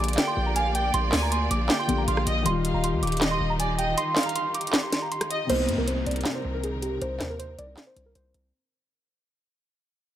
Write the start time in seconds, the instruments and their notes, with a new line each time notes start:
Already playing: felt piano D3 A#3 G4, string section A#3 F4 G4 D5
0.00 808-style bass A#1, synth keys D6, closed hi-hat
0.08 closed hi-hat
0.13 clap, closed hi-hat
0.18 violin section G5, snare, closed hi-hat
0.28 synth keys C6
0.37 808-style bass A#1
0.46 synth keys A#5
0.56 violin section F5, synth keys G#5, closed hi-hat
0.75 synth keys G5, violin section G5, closed hi-hat
0.94 808-style bass A#1, synth keys C6, closed hi-hat
1.12 808-style bass D2, violin section G#5, snare, clap, open hi-hat
1.23 synth keys A#5
1.32 synth keys C6, closed hi-hat
1.51 808-style bass A#1, synth keys D6, closed hi-hat
1.69 violin section G5, snare, clap, closed hi-hat
1.79 synth keys C6
1.87 808-style bass A#1, felt piano D3 A#3 G4, closed hi-hat
1.98 synth keys A#5
2.08 808-style bass A#1, violin section F5, synth keys C6, closed hi-hat
2.17 cross-stick
2.27 808-style bass A#1, violin section D#5, closed hi-hat
2.43 808-style bass D#1, felt piano D#3 G3, string section D#3 D#4, synth keys C6, closed hi-hat
2.48 felt piano F4
2.65 violin section F5, closed hi-hat
2.74 808-style bass D#1, synth keys A#5
2.84 synth keys C6, closed hi-hat
2.93 808-style bass D#2
3.03 808-style bass D#1, synth keys D6, closed hi-hat
3.07 closed hi-hat
3.12 closed hi-hat
3.17 closed hi-hat
3.21 violin section D#5, snare, clap, closed hi-hat
3.31 synth keys C6
3.41 808-style bass D#1
3.50 synth keys A#5
3.60 violin section D5, synth keys G#5, closed hi-hat
3.79 violin section D#5, synth keys G5, closed hi-hat
3.98 synth keys C6, closed hi-hat
4.16 violin section F5, snare, clap, closed hi-hat, open hi-hat
4.23 synth keys A#5, closed hi-hat
4.29 closed hi-hat
4.36 synth keys C6, closed hi-hat
4.54 synth keys D6, closed hi-hat
4.61 closed hi-hat
4.67 closed hi-hat
4.73 snare, clap, closed hi-hat
4.83 synth keys C6
4.93 snare, closed hi-hat
5.02 synth keys A#5
5.12 synth keys C6, closed hi-hat
5.21 cross-stick, closed hi-hat
5.31 violin section D#5, closed hi-hat
5.47 808-style bass C2, felt piano C3 A#3, string section C3 C4 D#4 A#4, synth keys C5, closed hi-hat, crash, downlifter
5.52 felt piano D#4
5.69 808-style bass G2, closed hi-hat
5.78 808-style bass C2, synth keys A#4
5.88 synth keys C5, closed hi-hat
6.06 808-style bass C2, synth keys D5, closed hi-hat
6.11 closed hi-hat
6.16 closed hi-hat
6.21 clap, closed hi-hat
6.25 snare, closed hi-hat
6.35 synth keys C5
6.45 808-style bass C2
6.54 synth keys A#4
6.64 synth keys G#4, closed hi-hat
6.82 synth keys G4, closed hi-hat
7.02 808-style bass C2, synth keys C5, closed hi-hat
7.20 808-style bass D#2, snare, clap, closed hi-hat
7.30 synth keys A#4
7.39 synth keys C5, closed hi-hat
7.58 808-style bass C2, synth keys D5, closed hi-hat
7.77 snare, clap, closed hi-hat
7.87 synth keys C5
7.96 808-style bass C2, closed hi-hat
8.06 synth keys A#4
8.15 808-style bass C2, synth keys C5, closed hi-hat
8.34 808-style bass C2, closed hi-hat